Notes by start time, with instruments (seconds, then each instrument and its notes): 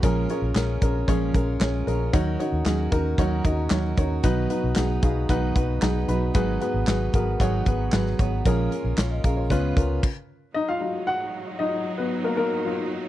0.02 fingered electric bass A#1, steel-string acoustic guitar A#2 F3 G#3 C#4 F4 A#4, upright piano A#2 C#4 G#4 A#4, kick, closed hi-hat
0.29 steel-string acoustic guitar G#3 C#4 F4 A#4, upright piano C#4 G#4 C#5, closed hi-hat
0.42 fingered electric bass A#1
0.55 fingered electric bass A#1, steel-string acoustic guitar G#3 C#4 F4 A#4, upright piano C#4 G#4 A#4, snare, clap, closed hi-hat
0.81 fingered electric bass A#1, steel-string acoustic guitar G#3 C#4 F4 A#4, upright piano C#4 G#4 A#4, kick, closed hi-hat
1.08 fingered electric bass A#1, steel-string acoustic guitar A#2 F3 G#3 C#4 F4 A#4, upright piano C#4 G#4 C#5, kick, closed hi-hat
1.34 fingered electric bass A#1, steel-string acoustic guitar G#3 C#4 F4 A#4, upright piano C#4 G#4 A#4, kick, closed hi-hat
1.60 fingered electric bass A#1, steel-string acoustic guitar G#3 C#4 F4 A#4, upright piano C#4 G#4 C#5, snare, clap, closed hi-hat
1.87 fingered electric bass A#1, steel-string acoustic guitar G#3 C#4 F4 A#4, upright piano C#4 G#4 A#4, closed hi-hat
2.13 fingered electric bass D#2, steel-string acoustic guitar D#3 F#3 C#4 F#4 A#4, upright piano D#3 D#4 F#4 C#5, kick, closed hi-hat
2.39 steel-string acoustic guitar C#4 F#4 A#4, upright piano D#4 F#4 C#5, closed hi-hat
2.52 fingered electric bass D#2
2.66 fingered electric bass D#2, steel-string acoustic guitar F#3 C#4 F#4 A#4, upright piano D#4 F#4 G#4, snare, clap, closed hi-hat
2.92 fingered electric bass D#2, steel-string acoustic guitar C#4 F#4 A#4, upright piano D#4 F#4 A#4, kick, closed hi-hat
3.18 fingered electric bass D#2, steel-string acoustic guitar D#3 F#3 C#4 F#4 A#4, upright piano D#4 F#4 C#5, kick, closed hi-hat
3.44 fingered electric bass D#2, steel-string acoustic guitar C#4 F#4 A#4, upright piano D#4 F#4 D#5, kick, closed hi-hat
3.70 fingered electric bass D#2, steel-string acoustic guitar F#3 C#4 F#4 A#4, upright piano D#4 F#4 C#5, snare, clap, closed hi-hat
3.97 fingered electric bass D#2, steel-string acoustic guitar C#4 F#4 A#4, upright piano D#4 F#4 C#5, kick, closed hi-hat
4.23 fingered electric bass B1, steel-string acoustic guitar B2 D#3 F#3 B3 D#4 B4, upright piano B2 D#4 F#4 B4, kick, closed hi-hat
4.49 steel-string acoustic guitar F#3 B3 D#4 B4, upright piano D#4 F#4 B4, closed hi-hat
4.64 fingered electric bass B1
4.76 fingered electric bass B1, steel-string acoustic guitar F#3 B3 D#4 B4, upright piano D#4 F#4 G#4, snare, clap, closed hi-hat
5.02 fingered electric bass B1, steel-string acoustic guitar F#3 B3 D#4 B4, upright piano D#4 F#4 G#4 F5, kick, closed hi-hat
5.29 fingered electric bass B1, steel-string acoustic guitar B2 D#3 F#3 B3 D#4 B4, upright piano D#4 F#4 B4 F#5, kick, closed hi-hat
5.55 fingered electric bass B1, steel-string acoustic guitar F#3 B3 D#4 B4, upright piano D#4 F#4 B4 F#5, kick, closed hi-hat
5.82 fingered electric bass B1, steel-string acoustic guitar F#3 B3 D#4 B4, upright piano D#4 F#4 G#4 A#5, snare, clap, closed hi-hat
6.08 fingered electric bass B1, steel-string acoustic guitar F#3 B3 D#4 B4, upright piano D#4 F#4 B4 B5, closed hi-hat
6.34 fingered electric bass G#1, steel-string acoustic guitar G#2 D#3 F#3 B3 D#4 B4, upright piano G#2 F#4 G#4 B4, kick, closed hi-hat
6.60 steel-string acoustic guitar F#3 B3 D#4 B4, upright piano F#4 G#4 B4, closed hi-hat
6.74 fingered electric bass G#1
6.87 fingered electric bass G#1, steel-string acoustic guitar F#3 B3 D#4 B4, upright piano F#4 G#4 B4, snare, clap, closed hi-hat
7.13 fingered electric bass G#1, steel-string acoustic guitar F#3 B3 D#4 B4, upright piano F#4 G#4 A#4, kick, closed hi-hat
7.40 fingered electric bass G#1, steel-string acoustic guitar G#2 D#3 F#3 B3 D#4 B4, upright piano F#4 G#4 C#5, kick, closed hi-hat
7.66 fingered electric bass G#1, steel-string acoustic guitar F#3 B3 D#4 B4, upright piano F#4 G#4 B4, kick, closed hi-hat
7.92 fingered electric bass G#1, steel-string acoustic guitar F#3 B3 D#4 B4, upright piano F#4 G#4 B4, snare, clap, closed hi-hat
8.06 snare
8.19 fingered electric bass G#1, steel-string acoustic guitar F#3 B3 D#4 B4, upright piano F#4 G#4 C#5, kick, closed hi-hat
8.45 fingered electric bass A#1, steel-string acoustic guitar A#2 F3 G#3 C#4 F4 A#4, upright piano A#2 C#4 G#4 A#4, kick, closed hi-hat
8.71 steel-string acoustic guitar G#3 C#4 F4 A#4, closed hi-hat
8.84 fingered electric bass A#1
8.97 fingered electric bass A#1, steel-string acoustic guitar G#3 C#4 F4 A#4, upright piano F4 C#5, snare, clap, closed hi-hat
9.11 upright piano D#5
9.24 fingered electric bass A#1, steel-string acoustic guitar G#3 C#4 F4 A#4, upright piano G#4 F5, kick, closed hi-hat
9.37 upright piano F4 C#5
9.50 fingered electric bass C#2, steel-string acoustic guitar C#3 G#3 B3 F4 B4, upright piano C#3 C#4 F4 B4, kick, closed hi-hat
9.76 fingered electric bass C#2, steel-string acoustic guitar B3 F4 B4, upright piano C#4 F4 A#4, kick, closed hi-hat
10.03 kick, crash
10.54 string section F#3 D#4, upright piano D#4 D#5
10.68 upright piano F4 F5
10.81 upright piano F#3 D#4 F5
11.07 upright piano F#4 F#5
11.59 upright piano F#3 D#4 F4 D#5
11.98 upright piano B3 B4
12.24 upright piano A#3 A#4
12.37 upright piano A#3 A#4
12.65 upright piano F#3 D#4 F4